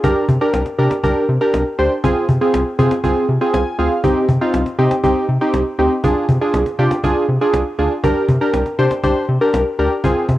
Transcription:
0.04 0.13 C2 loud
0.04 0.25 D4 medium
0.04 0.25 G4 medium
0.04 0.25 A#4 medium
0.04 cajon bass loud
0.29 0.38 C3 loud
0.29 cajon bass medium
0.41 0.63 D4 medium
0.41 0.63 G4 medium
0.41 0.63 A#4 medium
0.54 0.63 C2 loud
0.54 cajon slap loud
0.66 cajon slap medium
0.79 0.88 C3 medium
0.79 0.93 D4 medium
0.79 0.93 G4 medium
0.79 0.93 A#4 medium
0.91 cajon slap loud
1.04 1.13 C2 loud
1.04 1.25 D4 medium
1.04 1.25 G4 medium
1.04 1.25 A#4 medium
1.04 cajon bass medium
1.29 1.38 C3 loud
1.29 cajon slap soft
1.41 1.63 D4 medium
1.41 1.63 G4 medium
1.41 1.63 A#4 medium
1.54 1.63 C2 loud
1.54 cajon slap loud
1.79 1.88 D2 medium
1.79 1.93 D4 medium
1.79 1.93 G4 medium
1.79 1.93 C5 medium
1.79 cajon slap soft
2.04 2.13 C2 loud
2.04 2.25 C4 medium
2.04 2.25 F4 medium
2.04 2.25 G#4 loud
2.04 cajon bass loud
2.29 2.38 C3 loud
2.29 cajon bass medium
2.41 2.63 C4 medium
2.41 2.63 F4 medium
2.41 2.63 G#4 medium
2.54 2.63 C2 loud
2.54 cajon slap loud
2.79 2.88 C3 loud
2.79 2.93 C4 medium
2.79 2.93 F4 medium
2.79 2.93 G#4 loud
2.79 cajon bass medium
2.91 cajon slap loud
3.03 3.13 C2 loud
3.03 3.25 C4 medium
3.03 3.25 F4 medium
3.03 3.25 G#4 loud
3.03 cajon bass medium
3.29 3.38 C3 loud
3.29 cajon slap soft
3.41 3.63 C4 medium
3.41 3.63 F4 medium
3.41 3.63 G#4 medium
3.53 3.63 C2 medium
3.53 3.77 G#5 medium
3.53 cajon slap loud
3.79 3.88 D2 medium
3.79 3.93 C4 medium
3.79 3.93 F4 medium
3.79 3.93 G#4 medium
3.79 4.02 F5 medium
4.04 4.13 C2 loud
4.04 4.25 C4 medium
4.04 4.25 D#4 medium
4.04 4.25 G4 medium
4.04 cajon bass loud
4.29 4.38 C3 loud
4.29 cajon bass loud
4.41 4.63 C4 medium
4.41 4.63 D#4 medium
4.41 4.63 F4 medium
4.54 4.63 C2 loud
4.54 cajon slap loud
4.66 cajon slap medium
4.79 4.88 C3 loud
4.79 4.93 C4 medium
4.79 4.93 D#4 medium
4.79 4.93 G4 loud
4.91 cajon slap loud
5.04 5.13 C2 loud
5.04 5.25 C4 medium
5.04 5.25 D#4 medium
5.04 5.25 G4 medium
5.04 cajon bass medium
5.29 5.38 C3 loud
5.29 cajon slap soft
5.41 5.63 C4 medium
5.41 5.63 D#4 medium
5.41 5.63 G4 medium
5.54 5.63 C2 medium
5.54 cajon slap loud
5.79 5.88 D2 medium
5.79 5.93 C4 medium
5.79 5.93 D#4 medium
5.79 5.93 G4 medium
5.79 cajon slap soft
6.04 6.13 C2 loud
6.04 6.25 D4 medium
6.04 6.25 F4 medium
6.04 6.25 G#4 medium
6.04 cajon bass loud
6.29 6.38 C3 loud
6.29 cajon bass loud
6.41 6.63 D4 medium
6.41 6.63 F4 medium
6.41 6.63 G#4 medium
6.54 6.63 C2 loud
6.54 cajon slap loud
6.66 cajon slap medium
6.79 6.88 C3 loud
6.79 6.93 D4 medium
6.79 6.93 F4 medium
6.79 6.93 G4 loud
6.91 cajon slap loud
7.03 7.13 C2 loud
7.03 7.25 D4 medium
7.03 7.25 F4 medium
7.03 7.25 G#4 loud
7.03 cajon bass medium
7.29 7.38 C3 loud
7.29 cajon slap soft
7.41 7.63 D4 medium
7.41 7.63 F4 medium
7.41 7.63 G#4 medium
7.53 7.63 C2 loud
7.53 cajon slap loud
7.79 7.88 D2 medium
7.79 7.93 D4 medium
7.79 7.93 F4 medium
7.79 7.93 G#4 medium
8.04 8.13 C2 loud
8.04 8.25 D4 medium
8.04 8.25 G4 medium
8.04 8.25 A#4 loud
8.04 cajon bass loud
8.29 8.38 C3 loud
8.29 cajon bass loud
8.41 8.63 D4 medium
8.41 8.63 G4 medium
8.41 8.63 A#4 medium
8.54 8.63 C2 loud
8.54 cajon slap loud
8.66 cajon slap medium
8.79 8.88 C3 loud
8.79 8.93 D4 medium
8.79 8.93 G4 medium
8.79 8.93 C5 loud
8.91 cajon slap loud
9.04 9.13 C2 loud
9.04 9.25 D4 medium
9.04 9.25 G4 medium
9.04 9.25 C5 medium
9.04 cajon bass medium
9.29 9.38 C3 loud
9.29 cajon slap soft
9.41 9.63 D4 medium
9.41 9.63 G4 medium
9.41 9.63 A#4 medium
9.54 9.63 C2 loud
9.54 cajon slap loud
9.79 9.88 D2 medium
9.79 9.93 D4 medium
9.79 9.93 G4 medium
9.79 9.93 A#4 medium
9.79 cajon slap soft
10.04 10.13 C2 loud
10.04 10.25 C4 medium
10.04 10.25 F4 medium
10.04 10.25 G#4 medium
10.04 cajon bass loud
10.29 10.38 C3 loud
10.29 cajon bass medium

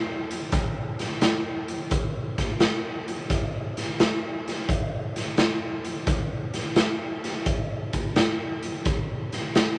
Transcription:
0.31 closed hi-hat medium
0.52 kick loud
0.52 snare soft
0.52 closed hi-hat medium
0.99 snare soft
0.99 closed hi-hat medium
1.21 snare loud
1.21 closed hi-hat medium
1.68 closed hi-hat medium
1.91 kick loud
1.91 closed hi-hat medium
2.38 kick medium
2.38 snare soft
2.38 closed hi-hat medium
2.60 snare loud
2.60 closed hi-hat medium
3.08 closed hi-hat medium
3.30 kick loud
3.30 snare soft
3.30 closed hi-hat medium
3.77 snare soft
3.77 closed hi-hat medium
4.00 snare loud
4.00 closed hi-hat medium
4.48 snare soft
4.48 closed hi-hat medium
4.69 kick loud
4.69 closed hi-hat medium
5.16 snare soft
5.16 closed hi-hat medium
5.37 snare loud
5.37 closed hi-hat medium
5.84 closed hi-hat medium
6.07 kick loud
6.07 snare soft
6.07 closed hi-hat medium
6.54 snare soft
6.54 closed hi-hat medium
6.76 snare loud
6.76 closed hi-hat medium
7.24 snare soft
7.24 closed hi-hat medium
7.46 kick loud
7.46 closed hi-hat medium
7.93 kick medium
7.93 closed hi-hat medium
8.16 snare loud
8.16 closed hi-hat medium
8.62 closed hi-hat medium
8.85 kick loud
8.85 snare soft
8.85 closed hi-hat medium
9.32 snare soft
9.32 closed hi-hat medium
9.55 snare loud
9.55 closed hi-hat medium

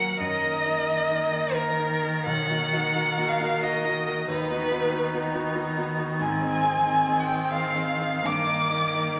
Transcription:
0.00 0.23 D#2 medium
0.00 0.22 F#3 medium
0.00 0.23 A#3 medium
0.00 0.23 F#4 medium
0.00 0.23 A#4 medium
0.00 2.22 A#4 medium
0.00 0.19 F#5 loud
0.20 0.42 F#2 loud
0.20 4.28 D#3 medium
0.20 1.56 D#5 loud
0.42 0.62 A#3 medium
0.42 0.63 D#4 medium
0.42 0.63 A#4 medium
0.65 0.85 A#3 medium
0.65 0.85 D#4 medium
0.65 0.86 A#4 medium
0.87 1.07 A#3 medium
0.87 1.08 D#4 medium
0.87 1.08 A#4 medium
1.10 1.30 A#3 medium
1.10 1.30 D#4 medium
1.10 1.30 A#4 medium
1.32 1.52 A#3 medium
1.32 1.52 D#4 medium
1.32 1.52 A#4 medium
1.55 1.76 A#3 medium
1.55 1.76 D#4 medium
1.55 2.25 A#4 loud
1.55 1.76 A#4 medium
1.78 2.00 A#3 medium
1.78 2.00 D#4 medium
1.78 2.00 A#4 medium
2.03 2.24 A#3 medium
2.03 2.24 D#4 medium
2.03 2.24 A#4 medium
2.24 2.48 B1 loud
2.24 4.23 A#4 medium
2.24 3.30 F#5 loud
2.49 2.70 A#3 medium
2.49 2.69 D#4 medium
2.49 2.70 F#4 medium
2.72 2.92 A#3 medium
2.72 2.93 D#4 medium
2.72 2.93 F#4 medium
2.94 3.14 A#3 medium
2.94 3.15 D#4 medium
2.94 3.15 F#4 medium
3.17 3.38 A#3 medium
3.17 3.38 D#4 medium
3.17 3.38 F#4 medium
3.29 3.64 F5 loud
3.39 3.59 A#3 medium
3.39 3.60 D#4 medium
3.39 3.60 F#4 medium
3.62 3.82 A#3 medium
3.62 3.82 D#4 medium
3.62 3.82 F#4 medium
3.62 4.28 D#5 loud
3.84 4.04 A#3 medium
3.84 4.04 D#4 medium
3.84 4.04 F#4 medium
4.07 4.26 A#3 medium
4.07 4.26 D#4 medium
4.07 4.26 F#4 medium
4.28 4.49 D#2 medium
4.28 8.20 D#3 loud
4.28 6.21 D#4 medium
4.28 5.54 B4 loud
4.50 4.70 B3 medium
4.50 4.70 D#4 medium
4.50 4.70 F#4 medium
4.72 4.91 B3 medium
4.72 4.91 D#4 medium
4.72 4.91 F#4 medium
4.93 5.12 B3 medium
4.93 5.12 D#4 medium
4.93 5.12 F#4 medium
5.13 5.32 B3 medium
5.13 5.32 D#4 medium
5.13 5.33 F#4 medium
5.34 5.53 B3 medium
5.34 5.53 D#4 medium
5.34 5.53 F#4 medium
5.54 5.74 B3 medium
5.54 5.74 D#4 medium
5.54 5.74 F#4 medium
5.77 5.96 B3 medium
5.77 5.96 D#4 medium
5.77 5.96 F#4 medium
5.98 6.17 B3 medium
5.98 6.17 D#4 medium
5.98 6.17 F#4 medium
6.19 6.41 G#2 loud
6.19 8.25 C4 loud
6.19 7.21 G#5 loud
6.41 6.61 C4 medium
6.41 6.61 D#4 medium
6.41 6.61 G#4 medium
6.63 6.83 C4 medium
6.63 6.83 D#4 medium
6.63 6.84 G#4 medium
6.85 7.05 C4 medium
6.85 7.06 D#4 medium
6.85 7.06 G#4 medium
7.07 7.27 C4 medium
7.07 7.27 D#4 medium
7.07 7.28 G#4 medium
7.19 7.52 G5 loud
7.29 7.49 C4 medium
7.29 7.49 D#4 medium
7.29 7.50 G#4 medium
7.52 7.73 C4 medium
7.52 7.73 D#4 medium
7.52 7.73 G#4 medium
7.52 8.28 F5 loud
7.74 7.97 C4 medium
7.74 7.97 D#4 medium
7.74 7.97 G#4 medium
7.99 8.21 C4 medium
7.99 8.21 D#4 medium
7.99 8.21 G#4 medium
8.23 8.46 G2 loud
8.23 9.20 D#3 loud
8.23 9.20 A#3 loud
8.23 9.20 D6 loud
8.47 8.68 A#3 medium
8.47 8.68 D#4 medium
8.47 8.68 A#4 medium
8.70 8.91 A#3 medium
8.70 8.91 D#4 medium
8.70 8.91 A#4 medium
8.94 9.14 A#3 medium
8.94 9.15 D#4 medium
8.94 9.15 A#4 medium
9.16 9.20 A#3 medium

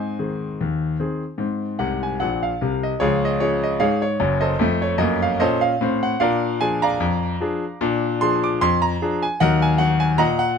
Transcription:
0.00 0.14 G#2 medium
0.00 0.19 C4 medium
0.00 2.58 C5 medium
0.00 2.58 D#5 medium
0.00 2.01 G#5 medium
0.19 0.42 D#3 soft
0.19 0.42 C4 soft
0.19 0.42 G#4 soft
0.61 0.95 D#2 medium
0.99 1.22 D#3 soft
0.99 1.22 C4 soft
0.99 1.23 G#4 soft
1.38 1.73 G#2 medium
1.38 1.62 C4 soft
1.79 2.10 C2 medium
1.79 2.10 C3 medium
1.79 2.02 F#5 medium
2.03 2.21 G#5 medium
2.20 2.51 A#1 medium
2.20 2.51 A#2 medium
2.20 2.43 F#5 medium
2.43 2.83 F5 medium
2.61 2.92 C2 medium
2.61 2.92 C3 medium
2.83 3.02 D#5 medium
3.00 3.35 C#2 loud
3.00 3.24 F3 medium
3.00 3.22 F4 medium
3.00 3.22 G#4 medium
3.00 3.23 C#5 loud
3.25 3.42 D#5 medium
3.40 3.63 F3 medium
3.40 3.63 C#4 medium
3.40 3.64 G#4 medium
3.40 3.63 C#5 medium
3.63 3.82 D#5 medium
3.80 4.15 G#2 medium
3.80 4.01 G#4 medium
3.80 4.00 C#5 medium
3.80 4.03 F5 loud
4.02 4.43 C#5 medium
4.20 4.53 F#1 medium
4.20 4.53 F#2 medium
4.41 4.80 A4 medium
4.41 4.80 C5 medium
4.41 4.82 D#5 medium
4.59 4.92 F2 medium
4.59 4.93 A3 medium
4.82 5.01 C#5 medium
4.98 5.31 F#2 medium
4.98 5.33 A#3 medium
4.98 5.22 D#5 medium
5.22 5.41 F5 medium
5.40 5.72 A#2 medium
5.40 5.73 C#4 medium
5.40 5.62 A4 medium
5.40 5.61 C5 medium
5.40 5.62 D#5 loud
5.61 6.02 F5 loud
5.81 6.13 A2 medium
5.81 6.14 C4 medium
6.03 6.21 F#5 medium
6.20 6.55 A#2 medium
6.20 6.44 D4 medium
6.20 6.58 A#4 medium
6.20 6.58 D5 medium
6.20 6.61 F5 loud
6.61 6.83 F3 medium
6.61 6.83 D4 medium
6.61 6.83 G#4 medium
6.61 6.83 G#5 loud
6.82 7.77 D5 medium
6.82 7.77 F5 medium
6.82 7.81 A#5 loud
7.00 7.35 F2 medium
7.40 7.63 F3 medium
7.40 7.63 D4 medium
7.40 7.63 G#4 medium
7.81 8.15 A#2 loud
7.81 8.04 D4 medium
8.21 8.43 F3 medium
8.21 8.43 D4 medium
8.21 8.44 G#4 medium
8.21 8.43 C6 loud
8.44 8.61 D6 medium
8.61 8.95 F2 medium
8.61 8.83 C6 loud
8.82 9.22 A#5 loud
9.02 9.24 F3 medium
9.02 9.24 D4 medium
9.02 9.24 G#4 medium
9.22 9.40 G#5 medium
9.40 9.75 D#2 loud
9.40 9.64 F#3 medium
9.40 9.62 A#4 medium
9.40 9.61 D#5 medium
9.40 9.62 F#5 loud
9.62 9.80 G#5 loud
9.78 10.01 F#3 medium
9.78 10.02 D#4 medium
9.78 10.02 F#4 medium
9.78 10.01 F#5 loud
10.00 10.19 G#5 loud
10.18 10.53 A#2 loud
10.18 10.40 D#5 medium
10.18 10.37 F#5 medium
10.18 10.41 A#5 loud
10.39 10.58 F#5 loud

